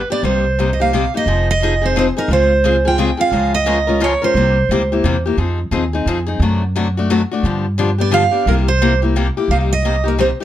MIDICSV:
0, 0, Header, 1, 4, 480
1, 0, Start_track
1, 0, Key_signature, -4, "minor"
1, 0, Tempo, 342661
1, 336, Time_signature, 3, 2, 24, 8
1, 14627, End_track
2, 0, Start_track
2, 0, Title_t, "Steel-string acoustic guitar"
2, 0, Program_c, 0, 25
2, 165, Note_on_c, 0, 74, 89
2, 335, Note_off_c, 0, 74, 0
2, 347, Note_on_c, 0, 72, 64
2, 1023, Note_on_c, 0, 75, 57
2, 1123, Note_off_c, 0, 75, 0
2, 1140, Note_on_c, 0, 77, 79
2, 1248, Note_off_c, 0, 72, 0
2, 1571, Note_off_c, 0, 77, 0
2, 1640, Note_on_c, 0, 75, 74
2, 2062, Note_off_c, 0, 75, 0
2, 2110, Note_on_c, 0, 75, 96
2, 2583, Note_off_c, 0, 75, 0
2, 2598, Note_on_c, 0, 72, 70
2, 2754, Note_off_c, 0, 72, 0
2, 2782, Note_on_c, 0, 72, 83
2, 2854, Note_off_c, 0, 72, 0
2, 3059, Note_on_c, 0, 70, 79
2, 3242, Note_off_c, 0, 70, 0
2, 3263, Note_on_c, 0, 72, 90
2, 4028, Note_on_c, 0, 79, 90
2, 4032, Note_off_c, 0, 72, 0
2, 4456, Note_off_c, 0, 79, 0
2, 4492, Note_on_c, 0, 77, 101
2, 4960, Note_off_c, 0, 77, 0
2, 4965, Note_on_c, 0, 75, 102
2, 5649, Note_off_c, 0, 75, 0
2, 5658, Note_on_c, 0, 73, 85
2, 5935, Note_off_c, 0, 73, 0
2, 5941, Note_on_c, 0, 72, 72
2, 7309, Note_off_c, 0, 72, 0
2, 11223, Note_on_c, 0, 74, 85
2, 11392, Note_off_c, 0, 74, 0
2, 11398, Note_on_c, 0, 77, 117
2, 11882, Note_off_c, 0, 77, 0
2, 11885, Note_on_c, 0, 70, 74
2, 11959, Note_off_c, 0, 70, 0
2, 12164, Note_on_c, 0, 72, 91
2, 12601, Note_off_c, 0, 72, 0
2, 13320, Note_on_c, 0, 77, 77
2, 13394, Note_off_c, 0, 77, 0
2, 13624, Note_on_c, 0, 75, 102
2, 14098, Note_off_c, 0, 75, 0
2, 14120, Note_on_c, 0, 70, 65
2, 14190, Note_off_c, 0, 70, 0
2, 14295, Note_on_c, 0, 72, 85
2, 14367, Note_off_c, 0, 72, 0
2, 14627, End_track
3, 0, Start_track
3, 0, Title_t, "Steel-string acoustic guitar"
3, 0, Program_c, 1, 25
3, 141, Note_on_c, 1, 67, 43
3, 169, Note_on_c, 1, 62, 47
3, 176, Note_on_c, 1, 59, 42
3, 321, Note_off_c, 1, 67, 0
3, 325, Note_on_c, 1, 48, 50
3, 326, Note_off_c, 1, 59, 0
3, 329, Note_on_c, 1, 55, 59
3, 332, Note_on_c, 1, 58, 58
3, 333, Note_off_c, 1, 62, 0
3, 338, Note_on_c, 1, 63, 57
3, 338, Note_on_c, 1, 67, 51
3, 617, Note_off_c, 1, 48, 0
3, 618, Note_off_c, 1, 55, 0
3, 620, Note_off_c, 1, 58, 0
3, 623, Note_off_c, 1, 63, 0
3, 623, Note_off_c, 1, 67, 0
3, 820, Note_on_c, 1, 48, 70
3, 830, Note_on_c, 1, 55, 76
3, 834, Note_on_c, 1, 58, 66
3, 837, Note_on_c, 1, 63, 79
3, 840, Note_on_c, 1, 67, 71
3, 970, Note_off_c, 1, 48, 0
3, 975, Note_off_c, 1, 55, 0
3, 977, Note_off_c, 1, 58, 0
3, 979, Note_off_c, 1, 63, 0
3, 980, Note_off_c, 1, 67, 0
3, 1119, Note_on_c, 1, 67, 54
3, 1127, Note_on_c, 1, 63, 44
3, 1140, Note_on_c, 1, 58, 45
3, 1294, Note_off_c, 1, 58, 0
3, 1297, Note_off_c, 1, 67, 0
3, 1301, Note_off_c, 1, 63, 0
3, 1306, Note_on_c, 1, 48, 82
3, 1311, Note_on_c, 1, 58, 82
3, 1315, Note_on_c, 1, 55, 86
3, 1319, Note_on_c, 1, 63, 81
3, 1324, Note_on_c, 1, 67, 93
3, 1453, Note_off_c, 1, 48, 0
3, 1456, Note_off_c, 1, 58, 0
3, 1458, Note_off_c, 1, 55, 0
3, 1460, Note_off_c, 1, 63, 0
3, 1462, Note_off_c, 1, 67, 0
3, 1597, Note_on_c, 1, 67, 52
3, 1609, Note_on_c, 1, 63, 45
3, 1623, Note_on_c, 1, 58, 36
3, 1777, Note_off_c, 1, 63, 0
3, 1777, Note_off_c, 1, 67, 0
3, 1784, Note_off_c, 1, 58, 0
3, 1786, Note_on_c, 1, 53, 62
3, 1790, Note_on_c, 1, 60, 70
3, 1794, Note_on_c, 1, 63, 61
3, 1798, Note_on_c, 1, 68, 63
3, 2068, Note_off_c, 1, 53, 0
3, 2070, Note_off_c, 1, 60, 0
3, 2072, Note_off_c, 1, 63, 0
3, 2074, Note_off_c, 1, 68, 0
3, 2272, Note_on_c, 1, 53, 72
3, 2284, Note_on_c, 1, 63, 84
3, 2288, Note_on_c, 1, 60, 88
3, 2295, Note_on_c, 1, 68, 92
3, 2417, Note_off_c, 1, 53, 0
3, 2423, Note_off_c, 1, 63, 0
3, 2425, Note_off_c, 1, 60, 0
3, 2428, Note_off_c, 1, 68, 0
3, 2542, Note_on_c, 1, 68, 61
3, 2563, Note_on_c, 1, 63, 53
3, 2577, Note_on_c, 1, 60, 43
3, 2730, Note_off_c, 1, 68, 0
3, 2739, Note_off_c, 1, 60, 0
3, 2740, Note_off_c, 1, 63, 0
3, 2745, Note_on_c, 1, 53, 89
3, 2756, Note_on_c, 1, 60, 83
3, 2758, Note_on_c, 1, 63, 98
3, 2761, Note_on_c, 1, 68, 94
3, 2894, Note_off_c, 1, 53, 0
3, 2899, Note_off_c, 1, 60, 0
3, 2900, Note_off_c, 1, 63, 0
3, 2902, Note_off_c, 1, 68, 0
3, 3034, Note_on_c, 1, 68, 54
3, 3048, Note_on_c, 1, 63, 54
3, 3065, Note_on_c, 1, 60, 40
3, 3216, Note_off_c, 1, 68, 0
3, 3219, Note_off_c, 1, 60, 0
3, 3223, Note_off_c, 1, 63, 0
3, 3229, Note_on_c, 1, 49, 56
3, 3236, Note_on_c, 1, 60, 65
3, 3237, Note_on_c, 1, 56, 64
3, 3238, Note_on_c, 1, 68, 57
3, 3248, Note_on_c, 1, 65, 70
3, 3510, Note_off_c, 1, 49, 0
3, 3513, Note_off_c, 1, 60, 0
3, 3514, Note_off_c, 1, 56, 0
3, 3514, Note_off_c, 1, 68, 0
3, 3520, Note_off_c, 1, 65, 0
3, 3696, Note_on_c, 1, 49, 81
3, 3701, Note_on_c, 1, 56, 79
3, 3712, Note_on_c, 1, 60, 90
3, 3717, Note_on_c, 1, 68, 87
3, 3720, Note_on_c, 1, 65, 92
3, 3850, Note_off_c, 1, 49, 0
3, 3852, Note_off_c, 1, 56, 0
3, 3857, Note_off_c, 1, 60, 0
3, 3860, Note_off_c, 1, 68, 0
3, 3861, Note_off_c, 1, 65, 0
3, 3992, Note_on_c, 1, 68, 59
3, 4013, Note_on_c, 1, 65, 53
3, 4022, Note_on_c, 1, 60, 41
3, 4168, Note_off_c, 1, 60, 0
3, 4173, Note_off_c, 1, 65, 0
3, 4174, Note_on_c, 1, 49, 88
3, 4175, Note_off_c, 1, 68, 0
3, 4180, Note_on_c, 1, 56, 78
3, 4185, Note_on_c, 1, 60, 93
3, 4190, Note_on_c, 1, 65, 95
3, 4196, Note_on_c, 1, 68, 104
3, 4329, Note_off_c, 1, 49, 0
3, 4331, Note_off_c, 1, 56, 0
3, 4334, Note_off_c, 1, 60, 0
3, 4336, Note_off_c, 1, 65, 0
3, 4339, Note_off_c, 1, 68, 0
3, 4446, Note_on_c, 1, 68, 61
3, 4458, Note_on_c, 1, 65, 51
3, 4476, Note_on_c, 1, 60, 43
3, 4642, Note_off_c, 1, 68, 0
3, 4648, Note_off_c, 1, 65, 0
3, 4650, Note_off_c, 1, 60, 0
3, 4652, Note_on_c, 1, 49, 56
3, 4656, Note_on_c, 1, 61, 62
3, 4660, Note_on_c, 1, 56, 58
3, 4661, Note_on_c, 1, 53, 60
3, 4670, Note_on_c, 1, 70, 68
3, 4675, Note_on_c, 1, 65, 72
3, 4942, Note_off_c, 1, 49, 0
3, 4944, Note_off_c, 1, 61, 0
3, 4946, Note_off_c, 1, 53, 0
3, 4946, Note_off_c, 1, 56, 0
3, 4950, Note_off_c, 1, 70, 0
3, 4953, Note_off_c, 1, 65, 0
3, 5124, Note_on_c, 1, 49, 82
3, 5128, Note_on_c, 1, 53, 77
3, 5131, Note_on_c, 1, 56, 87
3, 5135, Note_on_c, 1, 61, 92
3, 5137, Note_on_c, 1, 65, 91
3, 5143, Note_on_c, 1, 70, 82
3, 5284, Note_off_c, 1, 49, 0
3, 5286, Note_off_c, 1, 53, 0
3, 5287, Note_off_c, 1, 56, 0
3, 5289, Note_off_c, 1, 61, 0
3, 5290, Note_off_c, 1, 65, 0
3, 5293, Note_off_c, 1, 70, 0
3, 5422, Note_on_c, 1, 70, 55
3, 5437, Note_on_c, 1, 65, 49
3, 5445, Note_on_c, 1, 61, 51
3, 5455, Note_on_c, 1, 56, 51
3, 5603, Note_off_c, 1, 56, 0
3, 5603, Note_off_c, 1, 61, 0
3, 5608, Note_off_c, 1, 65, 0
3, 5608, Note_on_c, 1, 49, 93
3, 5610, Note_off_c, 1, 70, 0
3, 5613, Note_on_c, 1, 53, 99
3, 5619, Note_on_c, 1, 56, 86
3, 5620, Note_on_c, 1, 61, 91
3, 5624, Note_on_c, 1, 65, 101
3, 5626, Note_on_c, 1, 70, 100
3, 5765, Note_off_c, 1, 49, 0
3, 5768, Note_off_c, 1, 53, 0
3, 5771, Note_off_c, 1, 56, 0
3, 5771, Note_off_c, 1, 61, 0
3, 5774, Note_off_c, 1, 65, 0
3, 5775, Note_off_c, 1, 70, 0
3, 5906, Note_on_c, 1, 70, 60
3, 5916, Note_on_c, 1, 65, 51
3, 5926, Note_on_c, 1, 56, 49
3, 5927, Note_on_c, 1, 61, 50
3, 6092, Note_off_c, 1, 70, 0
3, 6097, Note_off_c, 1, 65, 0
3, 6102, Note_off_c, 1, 56, 0
3, 6103, Note_off_c, 1, 61, 0
3, 6111, Note_on_c, 1, 48, 54
3, 6118, Note_on_c, 1, 55, 62
3, 6122, Note_on_c, 1, 58, 72
3, 6123, Note_on_c, 1, 64, 61
3, 6134, Note_on_c, 1, 67, 65
3, 6391, Note_off_c, 1, 48, 0
3, 6395, Note_off_c, 1, 55, 0
3, 6397, Note_off_c, 1, 58, 0
3, 6397, Note_off_c, 1, 64, 0
3, 6403, Note_off_c, 1, 67, 0
3, 6596, Note_on_c, 1, 58, 86
3, 6597, Note_on_c, 1, 48, 75
3, 6599, Note_on_c, 1, 55, 85
3, 6607, Note_on_c, 1, 64, 89
3, 6613, Note_on_c, 1, 67, 91
3, 6739, Note_off_c, 1, 58, 0
3, 6740, Note_off_c, 1, 48, 0
3, 6741, Note_off_c, 1, 55, 0
3, 6745, Note_off_c, 1, 64, 0
3, 6748, Note_off_c, 1, 67, 0
3, 6891, Note_on_c, 1, 67, 52
3, 6903, Note_on_c, 1, 64, 57
3, 6912, Note_on_c, 1, 58, 43
3, 7060, Note_on_c, 1, 48, 86
3, 7065, Note_off_c, 1, 58, 0
3, 7065, Note_off_c, 1, 64, 0
3, 7065, Note_off_c, 1, 67, 0
3, 7077, Note_on_c, 1, 55, 80
3, 7082, Note_on_c, 1, 58, 96
3, 7082, Note_on_c, 1, 64, 93
3, 7082, Note_on_c, 1, 67, 88
3, 7212, Note_off_c, 1, 48, 0
3, 7220, Note_off_c, 1, 55, 0
3, 7222, Note_off_c, 1, 58, 0
3, 7222, Note_off_c, 1, 64, 0
3, 7223, Note_off_c, 1, 67, 0
3, 7363, Note_on_c, 1, 67, 48
3, 7381, Note_on_c, 1, 64, 51
3, 7384, Note_on_c, 1, 58, 43
3, 7529, Note_on_c, 1, 53, 57
3, 7533, Note_off_c, 1, 58, 0
3, 7533, Note_off_c, 1, 64, 0
3, 7537, Note_off_c, 1, 67, 0
3, 7538, Note_on_c, 1, 63, 66
3, 7539, Note_on_c, 1, 60, 64
3, 7543, Note_on_c, 1, 68, 64
3, 7820, Note_off_c, 1, 53, 0
3, 7825, Note_off_c, 1, 60, 0
3, 7825, Note_off_c, 1, 63, 0
3, 7827, Note_off_c, 1, 68, 0
3, 8003, Note_on_c, 1, 53, 78
3, 8015, Note_on_c, 1, 63, 77
3, 8016, Note_on_c, 1, 60, 85
3, 8026, Note_on_c, 1, 68, 87
3, 8163, Note_off_c, 1, 53, 0
3, 8169, Note_off_c, 1, 60, 0
3, 8169, Note_off_c, 1, 63, 0
3, 8175, Note_off_c, 1, 68, 0
3, 8310, Note_on_c, 1, 68, 53
3, 8329, Note_on_c, 1, 63, 59
3, 8335, Note_on_c, 1, 60, 43
3, 8492, Note_off_c, 1, 60, 0
3, 8494, Note_off_c, 1, 68, 0
3, 8503, Note_off_c, 1, 63, 0
3, 8507, Note_on_c, 1, 53, 86
3, 8509, Note_on_c, 1, 60, 101
3, 8517, Note_on_c, 1, 63, 94
3, 8527, Note_on_c, 1, 68, 98
3, 8655, Note_off_c, 1, 53, 0
3, 8655, Note_off_c, 1, 60, 0
3, 8660, Note_off_c, 1, 63, 0
3, 8665, Note_off_c, 1, 68, 0
3, 8776, Note_on_c, 1, 68, 65
3, 8796, Note_on_c, 1, 63, 56
3, 8807, Note_on_c, 1, 60, 48
3, 8967, Note_off_c, 1, 68, 0
3, 8977, Note_off_c, 1, 63, 0
3, 8982, Note_off_c, 1, 60, 0
3, 8992, Note_on_c, 1, 48, 60
3, 8994, Note_on_c, 1, 57, 73
3, 8999, Note_on_c, 1, 54, 68
3, 9004, Note_on_c, 1, 66, 74
3, 9007, Note_on_c, 1, 62, 66
3, 9271, Note_off_c, 1, 48, 0
3, 9272, Note_off_c, 1, 57, 0
3, 9274, Note_off_c, 1, 54, 0
3, 9277, Note_off_c, 1, 66, 0
3, 9279, Note_off_c, 1, 62, 0
3, 9462, Note_on_c, 1, 48, 82
3, 9471, Note_on_c, 1, 54, 82
3, 9474, Note_on_c, 1, 57, 89
3, 9480, Note_on_c, 1, 66, 86
3, 9484, Note_on_c, 1, 62, 78
3, 9612, Note_off_c, 1, 48, 0
3, 9616, Note_off_c, 1, 54, 0
3, 9618, Note_off_c, 1, 57, 0
3, 9621, Note_off_c, 1, 66, 0
3, 9623, Note_off_c, 1, 62, 0
3, 9767, Note_on_c, 1, 66, 62
3, 9788, Note_on_c, 1, 62, 61
3, 9790, Note_on_c, 1, 57, 49
3, 9932, Note_off_c, 1, 57, 0
3, 9939, Note_off_c, 1, 62, 0
3, 9942, Note_off_c, 1, 66, 0
3, 9945, Note_on_c, 1, 48, 81
3, 9949, Note_on_c, 1, 57, 103
3, 9955, Note_on_c, 1, 54, 94
3, 9955, Note_on_c, 1, 62, 90
3, 9965, Note_on_c, 1, 66, 106
3, 10093, Note_off_c, 1, 48, 0
3, 10095, Note_off_c, 1, 57, 0
3, 10098, Note_off_c, 1, 54, 0
3, 10098, Note_off_c, 1, 62, 0
3, 10103, Note_off_c, 1, 66, 0
3, 10246, Note_on_c, 1, 66, 58
3, 10264, Note_on_c, 1, 62, 56
3, 10281, Note_on_c, 1, 57, 52
3, 10421, Note_off_c, 1, 66, 0
3, 10430, Note_off_c, 1, 62, 0
3, 10432, Note_on_c, 1, 50, 68
3, 10435, Note_on_c, 1, 53, 60
3, 10439, Note_off_c, 1, 57, 0
3, 10447, Note_on_c, 1, 59, 67
3, 10450, Note_on_c, 1, 67, 68
3, 10451, Note_on_c, 1, 62, 66
3, 10711, Note_off_c, 1, 50, 0
3, 10712, Note_off_c, 1, 53, 0
3, 10718, Note_off_c, 1, 59, 0
3, 10719, Note_off_c, 1, 67, 0
3, 10720, Note_off_c, 1, 62, 0
3, 10897, Note_on_c, 1, 50, 89
3, 10907, Note_on_c, 1, 67, 86
3, 10910, Note_on_c, 1, 59, 85
3, 10911, Note_on_c, 1, 53, 86
3, 10912, Note_on_c, 1, 62, 105
3, 11049, Note_off_c, 1, 50, 0
3, 11054, Note_off_c, 1, 67, 0
3, 11055, Note_off_c, 1, 59, 0
3, 11056, Note_off_c, 1, 53, 0
3, 11056, Note_off_c, 1, 62, 0
3, 11183, Note_on_c, 1, 67, 56
3, 11206, Note_on_c, 1, 62, 53
3, 11218, Note_on_c, 1, 59, 53
3, 11354, Note_off_c, 1, 59, 0
3, 11364, Note_off_c, 1, 67, 0
3, 11364, Note_on_c, 1, 50, 91
3, 11367, Note_off_c, 1, 62, 0
3, 11371, Note_on_c, 1, 59, 90
3, 11375, Note_on_c, 1, 53, 100
3, 11381, Note_on_c, 1, 67, 102
3, 11383, Note_on_c, 1, 62, 96
3, 11522, Note_off_c, 1, 50, 0
3, 11526, Note_off_c, 1, 59, 0
3, 11527, Note_off_c, 1, 53, 0
3, 11530, Note_off_c, 1, 67, 0
3, 11532, Note_off_c, 1, 62, 0
3, 11644, Note_on_c, 1, 67, 58
3, 11660, Note_on_c, 1, 62, 50
3, 11675, Note_on_c, 1, 59, 50
3, 11839, Note_off_c, 1, 67, 0
3, 11847, Note_off_c, 1, 62, 0
3, 11855, Note_off_c, 1, 59, 0
3, 11867, Note_on_c, 1, 48, 60
3, 11868, Note_on_c, 1, 55, 64
3, 11869, Note_on_c, 1, 58, 68
3, 11877, Note_on_c, 1, 64, 64
3, 11881, Note_on_c, 1, 67, 71
3, 12147, Note_off_c, 1, 48, 0
3, 12148, Note_off_c, 1, 55, 0
3, 12148, Note_off_c, 1, 58, 0
3, 12153, Note_off_c, 1, 64, 0
3, 12154, Note_off_c, 1, 67, 0
3, 12349, Note_on_c, 1, 55, 89
3, 12352, Note_on_c, 1, 48, 82
3, 12355, Note_on_c, 1, 58, 96
3, 12363, Note_on_c, 1, 64, 80
3, 12363, Note_on_c, 1, 67, 97
3, 12494, Note_off_c, 1, 55, 0
3, 12496, Note_off_c, 1, 48, 0
3, 12497, Note_off_c, 1, 58, 0
3, 12501, Note_off_c, 1, 64, 0
3, 12501, Note_off_c, 1, 67, 0
3, 12635, Note_on_c, 1, 67, 54
3, 12645, Note_on_c, 1, 64, 47
3, 12663, Note_on_c, 1, 58, 48
3, 12815, Note_off_c, 1, 67, 0
3, 12819, Note_off_c, 1, 58, 0
3, 12820, Note_off_c, 1, 64, 0
3, 12830, Note_on_c, 1, 48, 85
3, 12835, Note_on_c, 1, 55, 82
3, 12836, Note_on_c, 1, 58, 88
3, 12837, Note_on_c, 1, 64, 97
3, 12841, Note_on_c, 1, 67, 99
3, 12974, Note_off_c, 1, 48, 0
3, 12977, Note_off_c, 1, 55, 0
3, 12977, Note_off_c, 1, 58, 0
3, 12978, Note_off_c, 1, 64, 0
3, 12980, Note_off_c, 1, 67, 0
3, 13126, Note_on_c, 1, 67, 57
3, 13139, Note_on_c, 1, 64, 49
3, 13152, Note_on_c, 1, 58, 47
3, 13300, Note_off_c, 1, 67, 0
3, 13306, Note_off_c, 1, 64, 0
3, 13313, Note_off_c, 1, 58, 0
3, 13323, Note_on_c, 1, 48, 50
3, 13328, Note_on_c, 1, 58, 67
3, 13331, Note_on_c, 1, 55, 50
3, 13339, Note_on_c, 1, 63, 60
3, 13340, Note_on_c, 1, 67, 63
3, 13595, Note_off_c, 1, 48, 0
3, 13598, Note_off_c, 1, 58, 0
3, 13599, Note_off_c, 1, 55, 0
3, 13603, Note_off_c, 1, 63, 0
3, 13604, Note_off_c, 1, 67, 0
3, 13794, Note_on_c, 1, 48, 68
3, 13800, Note_on_c, 1, 55, 80
3, 13800, Note_on_c, 1, 63, 80
3, 13804, Note_on_c, 1, 58, 76
3, 13812, Note_on_c, 1, 67, 74
3, 13936, Note_off_c, 1, 48, 0
3, 13939, Note_off_c, 1, 55, 0
3, 13940, Note_off_c, 1, 63, 0
3, 13941, Note_off_c, 1, 58, 0
3, 13945, Note_off_c, 1, 67, 0
3, 14059, Note_on_c, 1, 67, 49
3, 14079, Note_on_c, 1, 63, 50
3, 14087, Note_on_c, 1, 58, 40
3, 14247, Note_off_c, 1, 67, 0
3, 14256, Note_off_c, 1, 58, 0
3, 14257, Note_off_c, 1, 63, 0
3, 14266, Note_on_c, 1, 48, 80
3, 14268, Note_on_c, 1, 55, 84
3, 14273, Note_on_c, 1, 58, 82
3, 14279, Note_on_c, 1, 67, 93
3, 14281, Note_on_c, 1, 63, 82
3, 14413, Note_off_c, 1, 48, 0
3, 14413, Note_off_c, 1, 55, 0
3, 14416, Note_off_c, 1, 58, 0
3, 14419, Note_off_c, 1, 67, 0
3, 14420, Note_off_c, 1, 63, 0
3, 14572, Note_on_c, 1, 67, 51
3, 14579, Note_on_c, 1, 63, 49
3, 14627, Note_off_c, 1, 63, 0
3, 14627, Note_off_c, 1, 67, 0
3, 14627, End_track
4, 0, Start_track
4, 0, Title_t, "Upright bass"
4, 0, Program_c, 2, 32
4, 321, Note_on_c, 2, 36, 75
4, 1481, Note_off_c, 2, 36, 0
4, 1765, Note_on_c, 2, 29, 74
4, 2924, Note_off_c, 2, 29, 0
4, 3197, Note_on_c, 2, 37, 92
4, 4359, Note_off_c, 2, 37, 0
4, 4645, Note_on_c, 2, 37, 78
4, 5804, Note_off_c, 2, 37, 0
4, 6085, Note_on_c, 2, 36, 82
4, 6475, Note_off_c, 2, 36, 0
4, 6570, Note_on_c, 2, 37, 77
4, 6983, Note_off_c, 2, 37, 0
4, 7052, Note_on_c, 2, 40, 70
4, 7464, Note_off_c, 2, 40, 0
4, 7528, Note_on_c, 2, 41, 77
4, 7917, Note_off_c, 2, 41, 0
4, 8000, Note_on_c, 2, 39, 74
4, 8416, Note_off_c, 2, 39, 0
4, 8484, Note_on_c, 2, 41, 77
4, 8899, Note_off_c, 2, 41, 0
4, 8960, Note_on_c, 2, 42, 94
4, 10119, Note_off_c, 2, 42, 0
4, 10411, Note_on_c, 2, 43, 86
4, 11565, Note_off_c, 2, 43, 0
4, 11851, Note_on_c, 2, 36, 85
4, 13005, Note_off_c, 2, 36, 0
4, 13282, Note_on_c, 2, 36, 74
4, 14440, Note_off_c, 2, 36, 0
4, 14627, End_track
0, 0, End_of_file